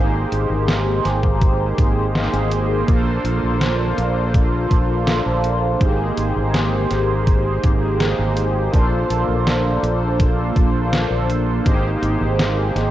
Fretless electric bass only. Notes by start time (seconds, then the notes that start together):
Already playing: G#1
0.32 G#1
0.50 G#1
1.05 G#1
1.78 G#1
2.33 G#1
2.88 A#1
3.24 A#1
3.43 A#1
3.98 A#1
4.71 A#1
5.26 A#1
5.81 G#1
6.17 G#1
6.36 G#1
6.91 G#1
7.64 G#1
8.19 G#1
8.73 A#1
9.10 A#1
9.28 A#1
9.83 A#1
10.56 A#1
11.10 A#1
11.66 G#1
12.02 G#1
12.21 G#1
12.75 G#1